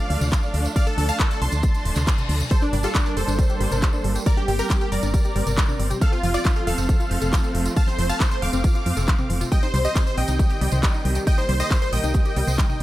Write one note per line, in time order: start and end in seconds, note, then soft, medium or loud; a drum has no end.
0.00 2.47 F3 medium
0.00 2.48 A3 medium
0.00 2.48 D4 medium
0.00 0.67 D5 medium
0.00 0.67 F5 loud
0.10 0.17 D2 loud
0.10 open hi-hat loud
0.21 0.35 D2 medium
0.21 closed hi-hat medium
0.21 mid tom medium
0.21 tambourine medium
0.32 kick loud
0.32 clap loud
0.32 closed hi-hat medium
0.32 tambourine medium
0.43 tambourine soft
0.54 0.68 D2 medium
0.54 open hi-hat loud
0.65 closed hi-hat medium
0.65 tambourine medium
0.76 0.86 D5 medium
0.76 0.86 F5 loud
0.76 kick loud
0.76 closed hi-hat medium
0.76 tambourine medium
0.87 0.97 A4 medium
0.87 tambourine soft
0.98 1.11 D2 loud
0.98 1.08 A4 medium
0.98 open hi-hat loud
1.09 1.19 F5 medium
1.09 1.19 A5 loud
1.09 1.19 A5 medium
1.09 closed hi-hat medium
1.09 tambourine medium
1.19 1.30 A4 medium
1.19 kick loud
1.19 clap loud
1.19 closed hi-hat medium
1.19 tambourine medium
1.31 1.40 A4 medium
1.31 1.41 A4 medium
1.31 closed hi-hat soft
1.31 tambourine soft
1.41 1.48 C2 medium
1.41 2.42 A5 medium
1.41 2.42 C6 loud
1.41 open hi-hat loud
1.52 1.66 D2 medium
1.52 closed hi-hat medium
1.52 tambourine medium
1.63 kick loud
1.63 closed hi-hat medium
1.63 tambourine medium
1.63 reverse cymbal medium
1.74 closed hi-hat soft
1.74 tambourine soft
1.85 1.92 D1 medium
1.85 open hi-hat loud
1.96 2.10 D2 medium
1.96 clap soft
1.96 closed hi-hat medium
1.96 mid tom medium
1.96 tambourine medium
2.07 kick loud
2.07 clap loud
2.07 closed hi-hat medium
2.07 tambourine medium
2.18 closed hi-hat soft
2.18 mid tom medium
2.18 tambourine soft
2.29 2.43 D2 loud
2.29 open hi-hat loud
2.40 closed hi-hat medium
2.40 mid tom medium
2.40 tambourine medium
2.51 2.56 G3 medium
2.51 5.98 G3 medium
2.51 5.98 A#3 medium
2.51 4.24 D4 medium
2.51 2.61 A4 medium
2.51 2.61 C5 loud
2.51 kick loud
2.51 closed hi-hat medium
2.51 tambourine medium
2.62 2.67 D4 medium
2.62 2.72 D4 medium
2.62 tambourine soft
2.73 2.86 G1 loud
2.73 2.78 G3 loud
2.73 2.83 D4 medium
2.73 open hi-hat loud
2.73 mid tom medium
2.83 2.94 F4 medium
2.83 2.89 G4 medium
2.83 2.94 A4 loud
2.83 2.94 A4 medium
2.83 closed hi-hat medium
2.83 tambourine medium
2.95 3.00 G3 medium
2.95 3.05 D4 medium
2.95 kick loud
2.95 clap loud
2.95 closed hi-hat medium
2.95 tambourine medium
3.06 3.16 D4 medium
3.06 3.13 A#4 medium
3.06 tambourine soft
3.17 3.23 F1 medium
3.17 3.22 G3 medium
3.17 4.18 A4 medium
3.17 4.18 C5 loud
3.17 open hi-hat loud
3.28 3.41 G1 medium
3.28 3.35 D4 medium
3.28 closed hi-hat medium
3.28 tambourine medium
3.39 3.44 G3 loud
3.39 kick loud
3.39 closed hi-hat medium
3.39 tambourine medium
3.50 3.55 G4 medium
3.50 closed hi-hat soft
3.50 tambourine soft
3.60 3.67 G1 loud
3.60 3.66 G3 loud
3.60 open hi-hat loud
3.71 3.85 G1 medium
3.71 3.77 A#4 medium
3.71 closed hi-hat medium
3.71 mid tom medium
3.71 tambourine medium
3.82 3.90 G3 medium
3.82 kick loud
3.82 clap loud
3.82 closed hi-hat medium
3.82 tambourine medium
3.93 4.01 D4 medium
3.93 tambourine soft
4.04 4.18 G1 medium
4.04 4.07 G3 medium
4.04 open hi-hat loud
4.15 4.23 G4 medium
4.15 closed hi-hat medium
4.15 tambourine medium
4.26 4.31 G3 medium
4.26 11.23 C4 medium
4.26 4.36 A#4 medium
4.26 4.36 D5 loud
4.26 kick loud
4.26 closed hi-hat medium
4.26 tambourine medium
4.37 4.42 D4 medium
4.37 4.47 G4 medium
4.37 tambourine soft
4.48 4.62 G1 loud
4.48 4.53 G3 loud
4.48 4.58 G4 medium
4.48 open hi-hat loud
4.59 4.64 G4 medium
4.59 4.69 G4 medium
4.59 4.69 A#4 loud
4.59 closed hi-hat medium
4.59 tambourine medium
4.70 4.75 G3 medium
4.70 4.80 G4 medium
4.70 kick loud
4.70 clap loud
4.70 closed hi-hat medium
4.70 tambourine medium
4.81 4.91 G4 medium
4.81 4.89 A#4 medium
4.81 tambourine soft
4.92 4.99 F1 medium
4.92 4.97 G3 medium
4.92 5.93 A#4 medium
4.92 5.93 D5 loud
4.92 open hi-hat loud
5.03 5.16 G1 medium
5.03 5.10 D4 medium
5.03 closed hi-hat medium
5.03 tambourine medium
5.14 5.19 G3 loud
5.14 kick loud
5.14 closed hi-hat medium
5.14 tambourine medium
5.25 5.30 G4 medium
5.25 closed hi-hat soft
5.25 tambourine soft
5.36 5.42 G1 loud
5.36 5.41 G3 loud
5.36 open hi-hat loud
5.47 5.60 G1 medium
5.47 5.52 A#4 medium
5.47 closed hi-hat medium
5.47 mid tom medium
5.47 tambourine medium
5.58 5.65 G3 medium
5.58 kick loud
5.58 clap loud
5.58 closed hi-hat medium
5.58 tambourine medium
5.69 5.76 D4 medium
5.69 mid tom medium
5.69 tambourine soft
5.79 5.93 G1 medium
5.79 5.83 G3 medium
5.79 open hi-hat loud
5.90 5.98 G4 medium
5.90 closed hi-hat medium
5.90 mid tom medium
5.90 tambourine medium
6.01 6.06 F3 medium
6.01 9.48 F3 medium
6.01 9.48 A3 medium
6.01 6.11 A4 medium
6.01 6.11 F5 loud
6.01 kick loud
6.01 closed hi-hat medium
6.01 tambourine medium
6.12 6.17 C4 medium
6.12 6.22 F4 medium
6.12 tambourine soft
6.23 6.37 F1 loud
6.23 6.28 F3 loud
6.23 6.33 F4 medium
6.23 open hi-hat loud
6.23 mid tom medium
6.34 6.44 F4 medium
6.34 6.39 F4 medium
6.34 6.44 D5 loud
6.34 closed hi-hat medium
6.34 tambourine medium
6.44 6.50 F3 medium
6.44 6.55 F4 medium
6.44 kick loud
6.44 clap loud
6.44 closed hi-hat medium
6.44 tambourine medium
6.56 6.66 F4 medium
6.56 6.64 A4 medium
6.56 tambourine soft
6.67 6.74 D#1 medium
6.67 6.72 F3 medium
6.67 7.68 A4 medium
6.67 7.68 F5 loud
6.67 open hi-hat loud
6.78 6.92 F1 medium
6.78 6.86 C4 medium
6.78 closed hi-hat medium
6.78 tambourine medium
6.89 6.94 F3 loud
6.89 kick loud
6.89 closed hi-hat medium
6.89 tambourine medium
7.00 7.05 F4 medium
7.00 closed hi-hat soft
7.00 tambourine soft
7.11 7.18 F1 medium
7.11 7.16 F3 loud
7.11 open hi-hat loud
7.22 7.35 F1 medium
7.22 7.27 A4 medium
7.22 closed hi-hat medium
7.22 mid tom medium
7.22 tambourine medium
7.33 7.40 F3 medium
7.33 kick loud
7.33 clap loud
7.33 closed hi-hat medium
7.33 tambourine medium
7.44 7.51 C4 medium
7.44 tambourine soft
7.55 7.68 F1 medium
7.55 7.58 F3 medium
7.55 open hi-hat loud
7.66 7.73 F4 medium
7.66 closed hi-hat medium
7.66 tambourine medium
7.76 7.82 F3 medium
7.76 7.86 F5 medium
7.76 7.86 A5 loud
7.76 kick loud
7.76 closed hi-hat medium
7.76 tambourine medium
7.88 7.93 C4 medium
7.88 7.97 C5 medium
7.88 tambourine soft
7.98 8.12 F1 loud
7.98 8.04 F3 loud
7.98 8.08 C5 medium
7.98 open hi-hat loud
8.09 8.14 F4 medium
8.09 8.19 F5 medium
8.09 8.19 A5 medium
8.09 8.19 A5 loud
8.09 closed hi-hat medium
8.09 tambourine medium
8.20 8.25 F3 medium
8.20 8.30 C5 medium
8.20 kick loud
8.20 clap loud
8.20 closed hi-hat medium
8.20 tambourine medium
8.31 8.39 A4 medium
8.31 8.41 C5 medium
8.31 closed hi-hat soft
8.31 tambourine soft
8.42 8.49 D#1 medium
8.42 8.47 F3 medium
8.42 9.43 F5 medium
8.42 9.43 D6 loud
8.42 open hi-hat loud
8.53 8.67 F1 medium
8.53 8.61 C4 medium
8.53 closed hi-hat medium
8.53 tambourine medium
8.64 8.69 F3 loud
8.64 kick loud
8.64 closed hi-hat medium
8.64 tambourine medium
8.75 8.80 F4 medium
8.75 closed hi-hat soft
8.75 tambourine soft
8.86 8.93 F2 medium
8.86 8.91 F3 loud
8.86 open hi-hat loud
8.97 9.11 F1 loud
8.97 9.02 A4 medium
8.97 closed hi-hat medium
8.97 mid tom medium
8.97 tambourine medium
9.08 9.16 F3 medium
9.08 kick loud
9.08 clap loud
9.08 closed hi-hat medium
9.08 tambourine medium
9.18 9.26 C4 medium
9.18 mid tom medium
9.18 tambourine soft
9.30 9.43 F1 medium
9.30 9.33 F3 medium
9.30 open hi-hat loud
9.41 9.48 F4 medium
9.41 closed hi-hat soft
9.41 mid tom medium
9.41 tambourine medium
9.52 12.83 D#3 medium
9.52 12.83 G3 medium
9.52 9.57 G3 medium
9.52 9.62 D#5 medium
9.52 9.62 G5 loud
9.52 kick loud
9.52 closed hi-hat medium
9.52 tambourine medium
9.62 9.68 D#4 medium
9.62 9.73 C5 medium
9.62 tambourine soft
9.74 9.87 C2 loud
9.74 9.79 G3 loud
9.74 9.84 C5 medium
9.74 open hi-hat loud
9.74 mid tom medium
9.85 9.90 G4 medium
9.85 9.95 C5 medium
9.85 9.94 D#5 loud
9.85 9.95 D#5 loud
9.85 closed hi-hat medium
9.85 tambourine medium
9.96 10.01 G3 medium
9.96 10.05 C5 medium
9.96 kick loud
9.96 clap loud
9.96 closed hi-hat medium
9.96 tambourine medium
10.07 10.16 C5 medium
10.07 10.14 C5 medium
10.07 10.17 C5 medium
10.07 tambourine soft
10.17 10.24 A#1 medium
10.17 10.23 G3 medium
10.17 11.18 D#5 medium
10.17 11.18 G5 loud
10.17 open hi-hat loud
10.28 10.42 C2 medium
10.28 10.36 D#4 medium
10.28 closed hi-hat medium
10.28 tambourine medium
10.39 10.44 G3 loud
10.39 kick loud
10.39 closed hi-hat medium
10.39 tambourine medium
10.49 10.55 G4 medium
10.49 closed hi-hat soft
10.49 tambourine soft
10.61 10.68 C2 loud
10.61 10.66 G3 loud
10.61 open hi-hat loud
10.72 10.86 C2 medium
10.72 10.77 C5 medium
10.72 closed hi-hat medium
10.72 mid tom medium
10.72 tambourine medium
10.83 10.91 G3 medium
10.83 kick loud
10.83 clap loud
10.83 closed hi-hat medium
10.83 tambourine medium
10.94 11.02 D#4 medium
10.94 tambourine soft
11.05 11.19 C2 medium
11.05 11.08 G3 medium
11.05 open hi-hat loud
11.15 11.24 G4 medium
11.15 closed hi-hat medium
11.15 tambourine medium
11.27 11.32 G3 medium
11.27 12.83 A#3 medium
11.27 11.37 D#5 medium
11.27 11.37 G5 loud
11.27 kick loud
11.27 closed hi-hat medium
11.27 tambourine medium
11.38 11.43 D#4 medium
11.38 11.48 C5 medium
11.38 tambourine soft
11.49 11.62 C2 loud
11.49 11.54 G3 loud
11.49 11.59 C5 medium
11.49 open hi-hat loud
11.60 11.65 G4 medium
11.60 11.70 C5 medium
11.60 11.70 D#5 loud
11.60 closed hi-hat medium
11.60 tambourine medium
11.71 11.76 G3 medium
11.71 11.81 C5 medium
11.71 kick loud
11.71 clap loud
11.71 closed hi-hat medium
11.71 tambourine medium
11.82 11.92 C5 medium
11.82 11.89 C5 medium
11.82 11.92 C5 medium
11.82 tambourine soft
11.93 11.99 A#1 medium
11.93 11.98 G3 medium
11.93 12.83 D#5 medium
11.93 12.83 G5 loud
11.93 open hi-hat loud
12.04 12.17 C2 medium
12.04 12.11 D#4 medium
12.04 closed hi-hat medium
12.04 tambourine medium
12.14 12.20 G3 loud
12.14 kick loud
12.14 closed hi-hat medium
12.14 tambourine medium
12.25 12.31 G4 medium
12.25 closed hi-hat soft
12.25 tambourine soft
12.36 12.43 C2 loud
12.36 12.42 G3 loud
12.36 open hi-hat loud
12.47 12.61 C2 medium
12.47 12.52 C5 medium
12.47 closed hi-hat medium
12.47 mid tom medium
12.47 tambourine medium
12.58 12.66 G3 medium
12.58 kick loud
12.58 clap loud
12.58 closed hi-hat medium
12.69 12.77 D#4 medium
12.69 mid tom medium
12.69 tambourine soft